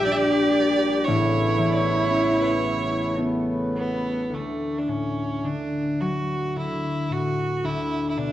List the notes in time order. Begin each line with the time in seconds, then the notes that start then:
Already playing: A#1 A#2 G3 A#3 D4 G4
0.05 D4 D5
0.12 D5 E5
1.05 A1 A2 C#3 A3 B3 E4 C#5
1.58 E3
1.72 C#5 D5
2.10 C#4
2.41 B4 C#5
3.18 B3 E4
3.77 B3
4.30 D2
4.34 A3
4.78 D4
4.87 A2 C#4
5.43 D3 D4
6.00 F#3 F#4
6.56 D3 E4
7.09 A2 F#4
7.63 D2 E4
8.09 E4
8.17 B2 D4